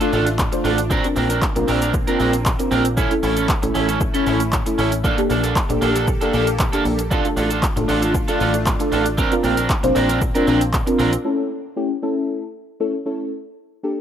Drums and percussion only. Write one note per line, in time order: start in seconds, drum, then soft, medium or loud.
0.01 closed hi-hat medium
0.01 shaker medium
0.13 open hi-hat medium
0.13 shaker soft
0.27 closed hi-hat medium
0.27 shaker medium
0.39 kick loud
0.39 clap loud
0.39 shaker medium
0.53 closed hi-hat medium
0.53 shaker medium
0.65 open hi-hat medium
0.65 shaker medium
0.78 closed hi-hat medium
0.78 shaker medium
0.91 kick loud
0.91 shaker medium
1.04 closed hi-hat soft
1.04 shaker soft
1.16 open hi-hat medium
1.16 shaker medium
1.30 closed hi-hat medium
1.30 shaker medium
1.42 kick loud
1.42 clap loud
1.42 shaker medium
1.56 closed hi-hat medium
1.56 shaker medium
1.68 open hi-hat medium
1.68 shaker medium
1.82 closed hi-hat medium
1.82 shaker medium
1.94 kick loud
1.94 shaker medium
2.08 closed hi-hat medium
2.08 shaker medium
2.20 open hi-hat medium
2.20 shaker soft
2.33 closed hi-hat medium
2.33 shaker medium
2.46 kick loud
2.46 clap loud
2.46 shaker medium
2.60 closed hi-hat medium
2.60 shaker medium
2.72 open hi-hat medium
2.72 shaker soft
2.85 closed hi-hat medium
2.85 shaker medium
2.97 kick loud
2.97 shaker medium
3.11 closed hi-hat soft
3.11 shaker soft
3.23 open hi-hat medium
3.23 shaker medium
3.37 closed hi-hat medium
3.37 shaker medium
3.49 kick loud
3.49 clap loud
3.49 shaker medium
3.63 closed hi-hat medium
3.63 shaker medium
3.75 open hi-hat medium
3.75 shaker medium
3.89 closed hi-hat medium
3.89 shaker medium
4.01 kick loud
4.01 shaker medium
4.14 closed hi-hat medium
4.14 shaker medium
4.27 open hi-hat medium
4.27 shaker soft
4.40 closed hi-hat medium
4.40 shaker medium
4.52 kick loud
4.52 clap loud
4.52 shaker medium
4.66 closed hi-hat medium
4.66 shaker medium
4.79 open hi-hat medium
4.79 shaker soft
4.92 closed hi-hat medium
4.92 shaker medium
5.04 kick loud
5.04 shaker medium
5.18 closed hi-hat soft
5.18 shaker soft
5.30 open hi-hat medium
5.30 shaker medium
5.44 closed hi-hat medium
5.44 shaker medium
5.56 kick loud
5.56 clap loud
5.56 shaker medium
5.70 closed hi-hat medium
5.70 shaker medium
5.82 open hi-hat medium
5.82 shaker medium
5.96 closed hi-hat medium
5.96 shaker medium
6.08 kick loud
6.08 shaker medium
6.21 closed hi-hat medium
6.21 shaker medium
6.34 open hi-hat medium
6.34 shaker soft
6.47 closed hi-hat medium
6.47 shaker medium
6.59 kick loud
6.59 clap loud
6.59 shaker medium
6.73 closed hi-hat medium
6.73 shaker medium
6.85 open hi-hat medium
6.85 shaker soft
6.99 closed hi-hat medium
6.99 shaker medium
7.11 kick loud
7.11 shaker medium
7.25 closed hi-hat soft
7.25 shaker soft
7.37 open hi-hat medium
7.37 shaker medium
7.51 closed hi-hat medium
7.51 shaker medium
7.63 kick loud
7.63 clap loud
7.63 shaker medium
7.77 closed hi-hat medium
7.77 shaker medium
7.89 open hi-hat medium
7.89 shaker medium
8.03 closed hi-hat medium
8.03 shaker medium
8.15 kick loud
8.15 shaker medium
8.28 closed hi-hat medium
8.28 shaker medium
8.40 open hi-hat medium
8.40 shaker soft
8.54 closed hi-hat medium
8.54 shaker medium
8.66 kick loud
8.66 clap loud
8.66 shaker medium
8.80 closed hi-hat medium
8.80 shaker medium
8.92 open hi-hat medium
8.92 shaker soft
9.06 closed hi-hat medium
9.06 shaker medium
9.18 kick loud
9.18 shaker medium
9.32 closed hi-hat soft
9.32 shaker soft
9.44 open hi-hat medium
9.44 shaker medium
9.57 closed hi-hat medium
9.57 shaker medium
9.70 kick loud
9.70 clap loud
9.70 shaker medium
9.84 closed hi-hat medium
9.84 shaker medium
9.96 open hi-hat medium
9.96 shaker medium
10.09 closed hi-hat medium
10.09 shaker medium
10.21 kick loud
10.21 shaker medium
10.35 closed hi-hat medium
10.35 shaker medium
10.47 open hi-hat medium
10.47 shaker soft
10.61 closed hi-hat medium
10.61 shaker medium
10.73 kick loud
10.73 clap loud
10.73 shaker medium
10.87 closed hi-hat medium
10.87 shaker medium
10.99 open hi-hat medium
10.99 shaker soft
11.13 closed hi-hat medium
11.13 shaker medium